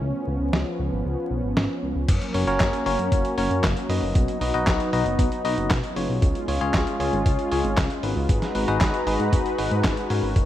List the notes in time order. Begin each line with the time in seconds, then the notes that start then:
Already playing: C#4
0.01 C#2 F3 B3
0.28 C#2
0.40 C#2
0.53 C#2, snare
0.79 C#2
0.92 G#1
1.05 C#2
1.31 B1
1.44 G#1
1.57 G#1, snare
1.83 C#2
1.96 C#2
2.08 F#1 F#3 A#3 C#4, kick, closed hi-hat, crash
2.21 closed hi-hat
2.34 F#1 C#4 F#4 A#4 C#5, open hi-hat
2.47 F#1 C#4 F#4 A#4 C#5, closed hi-hat
2.60 F#1, kick, snare, clap, closed hi-hat
2.73 closed hi-hat
2.86 F#1 C#4 F#4 A#4 C#5, open hi-hat
2.99 F#2, closed hi-hat
3.12 F#1, kick, closed hi-hat
3.25 closed hi-hat
3.38 F#1 C#4 F#4 A#4 C#5, open hi-hat
3.51 F#2, closed hi-hat
3.64 F#1, kick, snare, clap, closed hi-hat
3.77 closed hi-hat
3.89 F#2 D#4 F#4 B4 D#5, open hi-hat
4.02 F#1
4.15 B1 B3 D#4, kick, closed hi-hat
4.28 closed hi-hat
4.41 B1 D#4 F#4 B4 D#5, open hi-hat
4.54 B1 D#4 F#4 B4 D#5, closed hi-hat
4.67 B1, kick, snare, clap, closed hi-hat
4.80 closed hi-hat
4.93 B1 D#4 F#4 B4 D#5, open hi-hat
5.06 F#1, closed hi-hat
5.19 B1, kick, closed hi-hat
5.32 closed hi-hat
5.45 B1 D#4 F#4 B4 D#5, open hi-hat
5.58 F#1, closed hi-hat
5.70 B1, kick, snare, clap, closed hi-hat
5.83 closed hi-hat
5.96 F#1 C#4 F4 G#4 C#5, open hi-hat
6.09 B1
6.22 C#2 G#3 C#4 F4, kick, closed hi-hat
6.35 closed hi-hat
6.48 C#2 C#4 F4 G#4 C#5, open hi-hat
6.61 C#2 C#4 F4 G#4 C#5, closed hi-hat
6.74 C#2, kick, snare, clap, closed hi-hat
6.87 closed hi-hat
7.00 C#2 C#4 F4 G#4 C#5, open hi-hat
7.13 G#1, closed hi-hat
7.26 C#2, kick, closed hi-hat
7.39 closed hi-hat
7.52 C#2 C#4 F4 G#4 C#5, open hi-hat
7.64 G#1, closed hi-hat
7.77 C#2, kick, snare, clap, closed hi-hat
7.90 closed hi-hat
8.03 G#1 D#4 F#4 G#4 B4, open hi-hat
8.16 C#2
8.29 G#1 G#3 D#4 F#4 B4 A#5, kick, closed hi-hat
8.42 snare, closed hi-hat
8.55 G#1 D#4 F#4 G#4 B4, open hi-hat
8.68 G#1 D#4 F#4 G#4 B4, closed hi-hat
8.81 G#1, kick, snare, clap, closed hi-hat
8.94 closed hi-hat
9.07 G#1 D#4 F#4 G#4 B4, open hi-hat
9.20 G#2, closed hi-hat
9.33 G#1, kick, closed hi-hat
9.46 closed hi-hat
9.58 G#1 D#4 F#4 G#4 B4, open hi-hat
9.71 G#2, closed hi-hat
9.84 G#1, kick, snare, clap, closed hi-hat
9.97 closed hi-hat
10.10 G#2 C#4 F#4 A#4 C#5, open hi-hat
10.23 G#1
10.36 F#1 A#3 C#4 F#4, kick, closed hi-hat